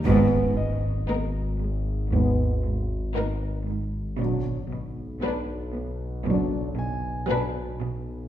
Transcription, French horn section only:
\new Staff \with { instrumentName = "French horn section" } { \time 4/4 \key gis \minor \tempo 4 = 58 <gis b>8 r4. <gis b>8 r4. | <fis d'>8 r4. <fis d'>8 r4. | }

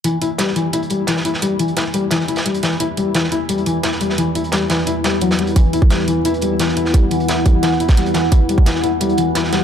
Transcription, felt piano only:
\new Staff \with { instrumentName = "Felt piano" } { \clef bass \time 4/4 \key e \minor \tempo 4 = 174 e8 e'8 g8 e8 e'8 g8 e8 e'8 | g8 e8 e'8 g8 e8 e'8 g8 e8 | e'8 g8 e8 e'8 g8 e8 e'8 g8 | e8 e'8 g8 e8 e'8 g8 fis8 g8 |
e8 e'8 g8 e8 e'8 g8 e8 e'8 | g8 e8 e'8 g8 e8 e'8 g8 e8 | e'8 g8 e8 e'8 g8 e8 e'8 g8 | }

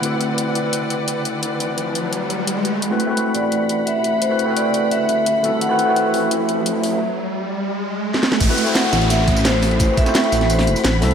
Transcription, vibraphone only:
\new Staff \with { instrumentName = "Vibraphone" } { \time 4/4 \key a \dorian \tempo 4 = 172 r1 | r1 | r4. d''4. e''4 | c''4 d''4 e''2 |
fis''4 e''2. | r1 | r4 fis''4 e''4 c''4 | c''8 e''4. c''2 | }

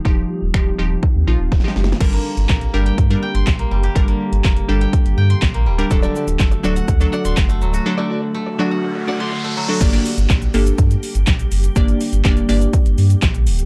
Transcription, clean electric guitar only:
\new Staff \with { instrumentName = "Clean electric guitar" } { \time 4/4 \key g \minor \tempo 4 = 123 r1 | r1 | r1 | r16 <d' fis' a' d''>16 <d' fis' a' d''>16 r8. <d' fis' a' d''>16 r8. <d' fis' a' d''>16 <d' fis' a' d''>16 r4 |
r16 <d' fis' a' d''>16 <d' fis' a' d''>16 r8. <d' fis' a' d''>16 r8. <d' fis' a' d''>16 <d' fis' a' d''>16 r4 | r1 | r1 | }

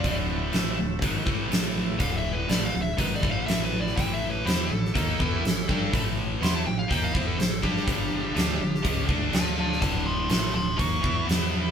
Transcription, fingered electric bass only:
\new Staff \with { instrumentName = "Fingered electric bass" } { \clef bass \time 4/4 \key d \mixolydian \tempo 4 = 123 d,,4 a,,8 d,,8 gis,,8 a,,8 a,,4 | d,,4 a,,8 d,,8 gis,,8 a,,8 a,,4 | a,,4 e,8 a,,8 ees,8 e,8 a,,8 g,8 | a,,4 e,8 a,,8 ees,8 e,8 a,,8 g,8 |
g,,4 d,8 g,,8 cis,8 d,8 d,4 | d,,4 a,,8 d,,8 ees,8 fes,8 e,4 | }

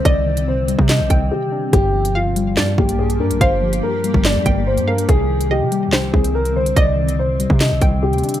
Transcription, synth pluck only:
\new Staff \with { instrumentName = "Synth pluck" } { \time 4/4 \key g \minor \tempo 4 = 143 ees''2~ ees''8 g''8 r4 | r4 f''4 d''4 r4 | f''2~ f''8 g''4 f''8 | r4 ees''4 c''4 r4 |
ees''2~ ees''8 g''8 r4 | }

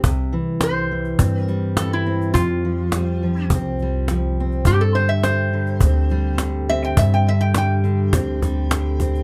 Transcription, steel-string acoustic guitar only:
\new Staff \with { instrumentName = "Steel-string acoustic guitar" } { \clef bass \time 4/4 \key c \major \tempo 4 = 104 << { g4 g4 c'8 g4 c'8 | r4 g4 c'8 g4 c'8 | r4 g4 c'8 g4 c'8 | r4 g4 c'8 g4 c'8 | } \\ { c8 e4 e4. e4 | f,8 f4 f4. f4 | g,8 d4 d4. d4 | g,8 d4 d4. d4 | } >> }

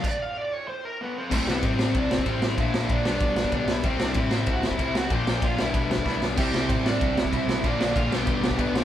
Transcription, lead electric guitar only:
\new Staff \with { instrumentName = "Lead electric guitar" } { \time 4/4 \key c \lydian \tempo 4 = 190 << { r2. <b b'>8 <c' c''>8 | <a a'>8 <b b'>8 <c' c''>4 <d' d''>8 <c' c''>4. | <e' e''>4 <d' d''>8 <d' d''>4. <d' d''>8 <e' e''>8 | <c' c''>8 <d' d''>8 <e' e''>4 <fis' fis''>8 <e' e''>4 <fis' fis''>8 |
<g' g''>4 <f' f''>8 <e' e''>2 r8 | <g' g''>4 r8 <d' d''>4 <e' e''>8 <e' e''>4 | <d' d''>8 <d' d''>8 <f' f''>8 <g' g''>4. <b b'>8 <c' c''>8 | } \\ { d''8 f''8 d''8 cis''8 c''8 bes'8 a'4 | r1 | r1 | r1 |
r1 | r1 | r1 | } >> }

